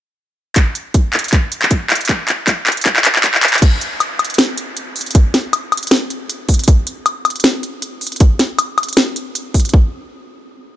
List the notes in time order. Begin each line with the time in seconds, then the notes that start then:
0.56 kick, clap, closed hi-hat
0.75 closed hi-hat
0.94 kick, closed hi-hat
1.13 clap, closed hi-hat
1.19 closed hi-hat
1.24 closed hi-hat
1.28 closed hi-hat
1.33 kick, clap, closed hi-hat
1.52 closed hi-hat
1.62 clap
1.71 kick, closed hi-hat
1.90 clap, closed hi-hat
1.95 closed hi-hat
2.01 closed hi-hat
2.05 closed hi-hat
2.09 kick, clap, closed hi-hat
2.28 clap, closed hi-hat
2.47 kick, clap, closed hi-hat
2.67 clap, closed hi-hat
2.72 closed hi-hat
2.77 closed hi-hat
2.81 closed hi-hat
2.86 kick, clap, closed hi-hat
2.96 clap
3.05 clap, closed hi-hat
3.15 clap
3.24 kick, clap, closed hi-hat
3.34 clap
3.43 clap, closed hi-hat
3.48 closed hi-hat
3.54 clap, closed hi-hat
3.58 closed hi-hat
3.62 kick, closed hi-hat, crash
3.81 closed hi-hat
4.00 closed hi-hat, high woodblock
4.19 closed hi-hat, high woodblock
4.25 closed hi-hat
4.30 closed hi-hat
4.34 closed hi-hat
4.38 snare, closed hi-hat
4.58 closed hi-hat
4.77 closed hi-hat
4.96 open hi-hat
5.01 closed hi-hat
5.06 closed hi-hat
5.11 closed hi-hat
5.15 kick, closed hi-hat
5.34 snare, closed hi-hat
5.53 closed hi-hat, high woodblock
5.72 closed hi-hat, high woodblock
5.77 closed hi-hat
5.83 closed hi-hat
5.87 closed hi-hat
5.91 snare, closed hi-hat
6.10 closed hi-hat
6.30 closed hi-hat
6.49 kick, open hi-hat
6.54 closed hi-hat
6.59 closed hi-hat
6.64 closed hi-hat
6.68 kick, closed hi-hat
6.87 closed hi-hat
7.06 closed hi-hat, high woodblock
7.25 closed hi-hat, high woodblock
7.30 closed hi-hat
7.36 closed hi-hat
7.40 closed hi-hat
7.44 snare, closed hi-hat
7.63 closed hi-hat
7.82 closed hi-hat
8.01 open hi-hat
8.07 closed hi-hat
8.12 closed hi-hat
8.16 closed hi-hat
8.20 kick, closed hi-hat
8.39 snare, closed hi-hat
8.59 closed hi-hat, high woodblock
8.78 closed hi-hat, high woodblock
8.83 closed hi-hat
8.89 closed hi-hat
8.93 closed hi-hat
8.97 snare, closed hi-hat
9.16 closed hi-hat
9.35 closed hi-hat
9.54 kick, open hi-hat
9.60 closed hi-hat
9.65 closed hi-hat
9.69 closed hi-hat
9.74 kick